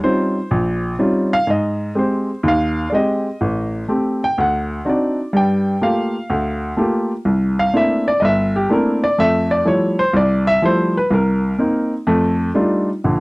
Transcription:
0.03 0.36 G3 soft
0.03 0.37 C4 soft
0.03 0.37 C#4 soft
0.03 0.37 D#4 soft
0.03 0.37 F4 medium
0.03 0.79 C5 medium
0.51 0.93 A#1 medium
0.99 1.33 G3 medium
0.99 1.33 C4 soft
0.99 1.33 C#4 medium
0.99 1.32 D#4 soft
0.99 1.33 F4 medium
1.33 1.48 F5 loud
1.47 1.89 G#2 medium
1.47 1.94 D#5 medium
1.95 2.29 G#3 medium
1.95 2.29 C4 soft
1.95 2.29 G4 medium
1.95 2.42 C5 medium
2.43 2.85 D#2 medium
2.48 2.91 F5 medium
2.90 3.26 G#3 medium
2.90 3.26 C4 soft
2.90 3.26 G4 medium
2.90 2.93 D5 medium
2.95 3.69 D#5 medium
3.41 3.82 A1 medium
3.88 4.22 A3 medium
3.88 4.22 C4 soft
3.88 4.22 G4 medium
4.24 4.38 G5 medium
4.38 4.79 D2 medium
4.38 4.83 F#5 medium
4.85 5.18 C4 medium
4.85 5.18 D4 soft
4.85 5.19 D#4 medium
4.85 5.19 F#4 medium
4.89 5.32 D5 medium
5.33 5.75 G2 medium
5.33 5.75 G3 medium
5.33 5.80 G5 medium
5.81 6.15 A3 soft
5.81 6.15 A#3 soft
5.81 6.15 F4 soft
5.81 6.15 G4 medium
5.81 6.58 F5 medium
6.30 6.71 D2 medium
6.77 7.11 A3 medium
6.77 7.11 A#3 medium
6.77 7.11 F4 medium
6.77 7.11 G4 medium
7.25 7.67 C2 medium
7.59 7.74 F5 medium
7.73 8.07 A3 soft
7.73 8.07 A#3 soft
7.73 8.07 C4 soft
7.73 8.07 D4 medium
7.73 8.07 E4 medium
7.73 8.06 E5 medium
8.08 8.22 D5 medium
8.20 8.64 G1 medium
8.20 8.23 D#5 medium
8.25 8.54 E5 medium
8.56 8.71 G4 medium
8.69 9.03 A3 medium
8.69 9.03 A#3 medium
8.69 9.04 C4 medium
8.69 9.04 D4 medium
8.69 9.04 E4 medium
8.69 9.02 A#4 medium
9.04 9.19 D5 medium
9.18 9.60 F2 medium
9.18 9.60 A3 medium
9.18 9.50 E5 loud
9.51 9.66 D5 medium
9.65 9.99 F3 medium
9.65 9.99 G3 soft
9.65 9.99 A3 soft
9.65 9.99 E4 medium
9.65 9.98 C#5 medium
9.99 10.14 C5 medium
10.13 10.56 C2 medium
10.13 10.46 D5 medium
10.47 10.63 E5 loud
10.62 10.96 F3 medium
10.62 10.96 G3 medium
10.62 10.96 A3 medium
10.62 10.96 E4 medium
10.62 10.95 C5 medium
10.97 11.12 B4 medium
11.11 11.52 C2 medium
11.11 11.88 A#4 medium
11.59 11.92 A#3 medium
11.59 11.93 C4 soft
11.59 11.93 D#4 medium
12.07 12.49 F2 medium
12.07 12.49 A3 medium
12.54 12.88 G3 medium
12.54 12.88 A3 medium
12.54 12.89 D4 medium
12.54 12.89 D#4 medium
12.54 12.89 F4 medium
13.04 13.20 A#1 medium
13.04 13.20 D3 medium

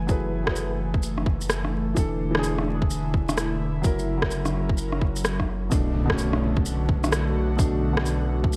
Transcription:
0.00 1.95 F#1 medium
0.00 1.97 E3 loud
0.00 0.07 F#3 medium
0.00 3.84 A3 medium
0.00 0.08 E4 medium
0.00 0.09 G#4 medium
0.00 0.10 A4 medium
0.00 0.11 B4 loud
0.00 3.84 B4 medium
0.00 2.72 G#5 medium
0.07 0.42 F#3 medium
0.07 0.43 E4 medium
0.07 0.44 G#4 medium
0.07 0.44 A4 medium
0.07 kick loud
0.07 shaker soft
0.11 0.45 B4 medium
0.44 1.93 F#3 medium
0.44 1.94 E4 medium
0.44 1.95 G#4 medium
0.44 kick medium
0.44 cross-stick loud
0.50 1.96 A4 medium
0.50 1.97 B4 medium
0.56 shaker soft
0.94 kick medium
1.03 shaker medium
1.18 cross-stick medium
1.26 kick loud
1.41 shaker medium
1.50 cross-stick loud
1.50 shaker medium
1.65 cross-stick medium
1.94 3.82 E1 medium
1.94 3.84 D3 medium
1.94 2.29 E3 medium
1.94 2.31 D4 medium
1.94 2.32 A4 medium
1.94 kick loud
1.94 shaker medium
2.18 7.21 E4 medium
2.31 3.80 E3 medium
2.35 3.82 D4 medium
2.35 3.84 G#4 loud
2.35 cross-stick loud
2.44 shaker medium
2.58 cross-stick medium
2.82 kick loud
2.90 shaker medium
3.14 kick loud
3.29 cross-stick medium
3.29 shaker medium
3.37 cross-stick medium
3.37 shaker medium
3.82 5.70 F#1 medium
3.82 5.72 C#3 loud
3.82 4.16 F#3 medium
3.82 4.19 E4 medium
3.82 kick loud
3.82 shaker medium
3.86 4.20 A#4 loud
3.99 shaker soft
4.17 5.67 F#3 medium
4.17 5.72 F#3 medium
4.21 5.69 E4 medium
4.21 kick medium
4.21 cross-stick loud
4.26 5.71 A#4 medium
4.31 5.72 A#4 medium
4.31 shaker medium
4.45 cross-stick medium
4.45 shaker soft
4.69 kick loud
4.78 shaker medium
4.92 cross-stick medium
5.01 kick medium
5.16 shaker medium
5.25 cross-stick loud
5.25 shaker medium
5.40 kick medium
5.40 cross-stick medium
5.70 8.56 B1 medium
5.70 6.04 B2 medium
5.70 8.56 D3 loud
5.70 6.06 A3 medium
5.70 kick loud
5.70 impact medium
5.70 shaker medium
5.74 6.07 D4 medium
5.81 8.56 A3 medium
6.05 7.55 B2 medium
6.05 8.56 F#4 medium
6.10 7.57 A3 medium
6.10 7.59 C#4 loud
6.10 kick medium
6.10 cross-stick loud
6.18 8.56 B4 medium
6.18 shaker medium
6.33 cross-stick medium
6.57 kick loud
6.66 shaker medium
6.89 kick loud
7.04 cross-stick medium
7.04 shaker medium
7.12 cross-stick loud
7.12 shaker medium
7.57 7.92 B2 medium
7.57 7.94 A3 medium
7.57 7.95 D4 loud
7.57 kick loud
7.57 shaker medium
7.93 8.56 B2 medium
7.93 8.56 A3 medium
7.97 8.56 D4 medium
7.97 cross-stick loud
8.06 shaker medium
8.44 kick loud
8.53 shaker medium

